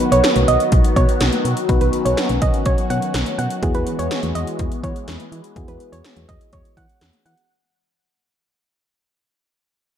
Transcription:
Already playing: D#3 F#3 B3 D#4 F#4 B4
0.12 B1 C#5, closed hi-hat
0.24 snare, closed hi-hat
0.36 B1, closed hi-hat
0.48 B1 D#5, closed hi-hat
0.60 closed hi-hat
0.72 B1, kick, closed hi-hat
0.84 closed hi-hat
0.96 B2 C#5, kick, closed hi-hat
1.09 closed hi-hat
1.21 B1, snare, closed hi-hat
1.33 closed hi-hat
1.45 B2, closed hi-hat
1.57 closed hi-hat
1.69 B1 B3 C#4 D#4 F#4 B4, kick, closed hi-hat
1.81 B1 B4, closed hi-hat
1.93 closed hi-hat
2.05 B1 C#5, closed hi-hat
2.17 snare, closed hi-hat
2.29 B1, closed hi-hat
2.42 B1 D#5, kick, closed hi-hat
2.54 closed hi-hat
2.66 B1 C#5, kick, closed hi-hat
2.78 closed hi-hat
2.90 B2 F#5, closed hi-hat
3.02 closed hi-hat
3.14 B1, snare, closed hi-hat
3.26 closed hi-hat
3.38 B2 F#5, closed hi-hat
3.50 closed hi-hat
3.63 E2 E3 G#3 B3 E4 F#4 G#4, kick, closed hi-hat
3.75 E2 B4, closed hi-hat
3.87 closed hi-hat
3.99 E2 C#5, closed hi-hat
4.11 snare, closed hi-hat
4.23 E2, closed hi-hat
4.35 E2 D#5, closed hi-hat
4.47 closed hi-hat
4.59 E2, kick, closed hi-hat
4.72 closed hi-hat
4.84 E3 C#5, kick, closed hi-hat
4.96 closed hi-hat
5.08 E2, snare, closed hi-hat
5.20 closed hi-hat
5.32 E3, closed hi-hat
5.44 closed hi-hat
5.56 E2 B3 E4 F#4 G#4, kick, closed hi-hat
5.68 E2 B4, closed hi-hat
5.80 closed hi-hat
5.92 E2 C#5, closed hi-hat
6.04 snare, closed hi-hat
6.16 E2, closed hi-hat
6.29 E2 D#5, kick, closed hi-hat
6.41 closed hi-hat
6.53 E2 C#5, kick, closed hi-hat
6.65 closed hi-hat
6.77 E3 F#5, kick, closed hi-hat
6.89 closed hi-hat
7.01 E2, snare, closed hi-hat
7.13 closed hi-hat
7.25 E3 F#5, closed hi-hat
7.37 closed hi-hat

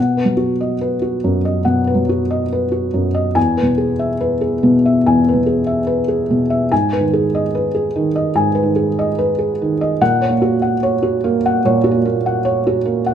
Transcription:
Already playing: B2 F#5
0.17 B4
0.25 F#3
0.37 F#4
0.61 D#5
0.81 B4
1.02 F#4
1.24 F#2
1.45 D#5
1.65 B2 F#5
1.87 B4
1.95 F#3
2.09 F#4
2.31 D#5
2.53 B4
2.72 F#4
2.94 F#2
3.14 D#5
3.35 E2 G#5
3.57 B4
3.62 B2
3.78 G#4
3.99 E5
4.21 B4
4.41 G#4
4.63 B2
4.86 E5
5.06 E2 G#5
5.28 B4
5.33 B2
5.46 G#4
5.67 E5
5.87 B4
6.08 G#4
6.30 B2
6.50 E5
6.72 G#2 G#5
6.93 B4
7.00 D#3
7.13 G#4
7.35 D#5
7.55 B4
7.75 G#4
7.96 D#3
8.16 D#5
8.35 G#2 G#5
8.55 B4
8.63 D#3
8.76 G#4
8.99 D#5
9.19 B4
9.39 G#4
9.62 D#3
9.81 D#5
10.01 A#2 F#5
10.21 C#5
10.30 A#3
10.42 F#4
10.62 F#5
10.83 C#5
11.03 F#4
11.24 A#3
11.46 F#5
11.65 A#2 C#5
11.84 F#4
11.91 A#3
12.05 A#3
12.26 F#5
12.45 C#5
12.67 F#4
12.85 A#3
13.06 F#5

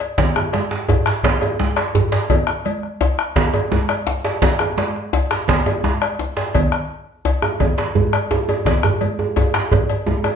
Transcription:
0.00 bombo rim, cowbell, djembe slap, high conga
0.18 bombo low, cowbell, djembe slap, djembe bass, low conga
0.36 bombo rim, djembe slap, djembe tone
0.53 bombo rim, cowbell, djembe slap, high conga
0.71 bombo rim, djembe slap
0.89 cowbell, djembe slap, djembe tone, high conga, djembe bass
1.06 bombo rim, djembe slap
1.23 bombo rim, bombo low, cowbell, djembe slap, low conga
1.41 cowbell, djembe slap, djembe tone
1.59 bombo rim, djembe slap, high conga, djembe bass
1.76 bombo rim, cowbell, djembe slap
1.95 djembe slap, djembe tone, djembe bass
2.12 cowbell, djembe slap
2.30 bombo low, cowbell, djembe bass, low conga
2.47 bombo rim, djembe slap
2.65 bombo rim, cowbell, djembe slap, high conga
2.83 bombo rim
3.01 cowbell, djembe slap, djembe tone, high conga, djembe bass
3.19 bombo rim
3.36 bombo rim, bombo low, cowbell, djembe slap, low conga
3.53 cowbell, djembe slap, djembe tone
3.71 bombo rim, djembe slap, high conga, djembe bass
3.89 bombo rim, cowbell
4.07 djembe slap, djembe tone
4.25 cowbell, djembe slap
4.42 bombo low, cowbell, djembe slap, low conga, djembe bass
4.59 bombo rim, djembe slap, djembe tone
4.78 bombo rim, cowbell, djembe slap, high conga
4.96 bombo rim
5.13 cowbell, djembe slap, djembe tone, djembe bass
5.31 bombo rim, djembe slap
5.48 bombo rim, bombo low, cowbell, djembe slap, low conga
5.66 cowbell, djembe slap, djembe tone
5.84 bombo rim, djembe slap, high conga, djembe bass
6.02 bombo rim, cowbell
6.19 djembe slap, djembe tone
6.37 cowbell, djembe slap
6.54 bombo low, cowbell, djembe bass, low conga
6.72 bombo rim, djembe slap
6.90 djembe slap
7.25 cowbell, djembe slap, djembe tone, djembe bass
7.42 bombo rim, djembe slap, djembe tone
7.60 bombo low, cowbell, djembe tone, low conga
7.78 bombo rim, cowbell, djembe slap, high conga
7.95 djembe slap, high conga, djembe bass
8.13 bombo rim, cowbell
8.31 djembe slap, djembe tone
8.49 cowbell, djembe slap, high conga, djembe tone
8.65 bombo low, cowbell, djembe slap, djembe bass, low conga
8.83 bombo rim, djembe slap, djembe bass
9.01 bombo rim, cowbell, djembe slap, high conga
9.19 bombo rim, djembe tone
9.36 cowbell, djembe slap, djembe tone, high conga, djembe bass
9.54 bombo rim, djembe slap
9.72 bombo rim, bombo low, cowbell, djembe bass, low conga
9.89 cowbell, djembe slap
10.06 bombo rim, djembe tone, high conga, djembe bass
10.24 bombo rim, cowbell, djembe tone

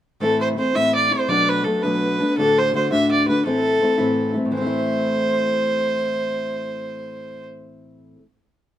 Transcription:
0.20 A2 E3 A3 C4 E4 A4
0.41 C5
0.56 E3 A3 C4 E4 C5
0.74 A2 E3 A3 C4 E4 E5
0.95 D5
1.11 A3 C4 E4 C5
1.28 B2 F#3 A3 B3 D4 D5
1.49 B4
1.64 F#3 A3 B3 A4
1.68 D4
1.83 B2 F#3 A3 B3 D4 B4
2.20 A3 B3 D4
2.37 D2 A2 D3 A3 D4 F#4 A4
2.58 C5
2.73 D3 A3 D4 F#4 C5
2.91 D2 A2 D3 A3 D4 F#4 E5
3.11 D5
3.27 D3 A3 D4 F#4 B4
3.44 A2 E3 A3 C4 E4 A4
3.80 E3 A3 C4 E4
3.98 A2 E3 A3 C4 E4
4.34 A3 C4 E4
4.45 A2
4.52 E3 C5
4.57 C4
4.62 A3
4.66 E4

